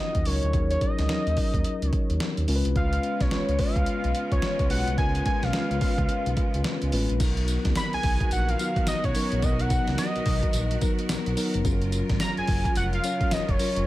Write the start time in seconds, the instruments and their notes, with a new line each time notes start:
Already playing: tine electric piano F#3 C#4 D#4 F4 F#4 A#4, analog synth lead D#5
0.15 analog synth bass D#2, kick, closed hi-hat
0.25 analog synth bass C#2, tine electric piano F#3 C#4 D#4 A#4, analog synth lead C#5, open hi-hat
0.43 analog synth bass D2, closed hi-hat
0.53 analog synth bass D#2, tine electric piano F#3 C#4 D#4 G#4, kick, closed hi-hat
0.61 tine electric piano A#4
0.71 analog synth lead C#5, closed hi-hat
0.81 analog synth lead D#5, kick, closed hi-hat
0.98 analog synth bass C#2, snare, closed hi-hat
1.09 analog synth bass D#2, tine electric piano F#3 C#4 D#4 A#4, snare, closed hi-hat
1.27 analog synth bass D#2, closed hi-hat
1.37 kick, open hi-hat
1.54 analog synth bass D#2, kick, closed hi-hat
1.64 closed hi-hat
1.82 analog synth bass C#2, closed hi-hat
1.89 analog synth lead C#5, kick, closed hi-hat
2.10 analog synth bass D#2, closed hi-hat
2.20 snare, closed hi-hat
2.37 analog synth bass D#2, closed hi-hat
2.48 analog synth bass C#2, tine electric piano G#3 C#4 F4 A#4, open hi-hat
2.56 tine electric piano B4
2.65 analog synth bass C2, closed hi-hat
2.75 analog synth bass C#2, string section C#3 G#3 B3 F4, analog synth lead F5, kick, closed hi-hat
2.93 closed hi-hat
3.03 closed hi-hat
3.20 analog synth bass B1, analog synth lead C#5, kick, snare, closed hi-hat
3.31 analog synth bass C#2, tine electric piano G#3 C#4 F4 B4, snare, closed hi-hat
3.48 analog synth bass C#2, closed hi-hat
3.59 analog synth lead F5, kick, open hi-hat
3.76 analog synth bass C#2, kick, closed hi-hat
3.86 closed hi-hat
4.04 analog synth bass B1, closed hi-hat
4.15 closed hi-hat
4.32 analog synth bass C#2, analog synth lead C#5, kick, closed hi-hat
4.42 snare, closed hi-hat
4.59 analog synth bass C#2, kick, closed hi-hat
4.70 analog synth bass B1, tine electric piano G#3 C#4 F4 B4, analog synth lead F#5, open hi-hat
4.87 analog synth bass C2, closed hi-hat
4.98 analog synth bass C#2, tine electric piano G#3 C#4 F4 A#4, analog synth lead G#5, kick, closed hi-hat
5.15 closed hi-hat
5.26 analog synth lead G#5, kick, closed hi-hat
5.43 analog synth bass B1, analog synth lead F5, snare, closed hi-hat
5.53 analog synth bass C#2, tine electric piano G#3 C#4 F4 B4, snare, closed hi-hat
5.71 analog synth bass C#2, closed hi-hat
5.81 kick, open hi-hat
5.98 analog synth bass C#2, kick, closed hi-hat
6.09 closed hi-hat
6.26 analog synth bass B1, closed hi-hat
6.37 kick, closed hi-hat
6.54 analog synth bass C#2, closed hi-hat
6.64 snare, closed hi-hat
6.82 analog synth bass C#2, closed hi-hat
6.92 analog synth bass A1, tine electric piano G#3 C#4 F4 B4, open hi-hat
7.09 analog synth bass A#1, closed hi-hat
7.20 analog synth bass B1, string section D#3 B3 F#4 A#4, tine electric piano F#3 B3 D#4 A#4, kick, closed hi-hat, crash, tambourine
7.37 closed hi-hat
7.48 closed hi-hat, tambourine
7.65 analog synth bass C#2, kick, snare, closed hi-hat
7.75 analog synth lead B5, snare, closed hi-hat, tambourine
7.93 analog synth bass B1, analog synth lead G#5, closed hi-hat
8.03 analog synth bass B1, kick, open hi-hat
8.20 kick, closed hi-hat
8.31 analog synth bass A#1, analog synth lead F#5, closed hi-hat, tambourine
8.49 analog synth lead F5, closed hi-hat
8.59 tine electric piano F#3 B3 D#4 F#4, closed hi-hat, tambourine
8.76 kick, closed hi-hat
8.87 analog synth bass B1, analog synth lead D#5, snare, closed hi-hat, tambourine
9.04 analog synth bass B1, analog synth lead C#5, kick, closed hi-hat
9.15 tine electric piano F#3 B3 D#4 A#4, open hi-hat, tambourine
9.32 analog synth bass A#1, closed hi-hat
9.42 analog synth bass B1, tine electric piano F#3 B3 D#4 A#4, analog synth lead D#5, kick, closed hi-hat, tambourine
9.59 analog synth lead F#5, closed hi-hat
9.70 kick, closed hi-hat, tambourine
9.87 analog synth bass C#2, snare, closed hi-hat
9.98 analog synth lead D#5, snare, closed hi-hat, tambourine
10.16 analog synth bass B1, closed hi-hat
10.26 analog synth bass B1, kick, open hi-hat
10.43 kick, closed hi-hat
10.53 analog synth bass A#1, closed hi-hat, tambourine
10.71 closed hi-hat
10.81 tine electric piano F#3 B3 D#4 A#4, kick, closed hi-hat, tambourine
10.99 closed hi-hat
11.09 analog synth bass B1, snare, closed hi-hat, tambourine
11.26 analog synth bass B1, closed hi-hat
11.37 tine electric piano F#3 B3 D#4 A#4, open hi-hat, tambourine
11.54 analog synth bass F1, closed hi-hat
11.64 analog synth bass F#1, string section C#3 F#3 F4, tine electric piano F#3 C#4 F4 G#4, kick, closed hi-hat, tambourine
11.72 tine electric piano A#4
11.82 closed hi-hat
11.92 closed hi-hat, tambourine
12.09 analog synth bass G#1, kick, snare, closed hi-hat
12.20 analog synth lead A#5, snare, closed hi-hat, tambourine
12.37 analog synth bass F#1, analog synth lead G#5, closed hi-hat
12.48 analog synth bass F#1, kick, open hi-hat
12.65 kick, closed hi-hat
12.76 analog synth bass F1, analog synth lead F#5, closed hi-hat, tambourine
12.93 analog synth lead F5, closed hi-hat
13.04 tine electric piano F#3 C#4 F4 C#5, closed hi-hat, tambourine
13.21 kick, closed hi-hat
13.31 analog synth bass F#1, analog synth lead D#5, snare, closed hi-hat, tambourine
13.49 analog synth bass F#1, analog synth lead C#5, kick, closed hi-hat
13.59 tine electric piano F#3 C#4 F4 A#4, open hi-hat, tambourine
13.76 analog synth bass F1, closed hi-hat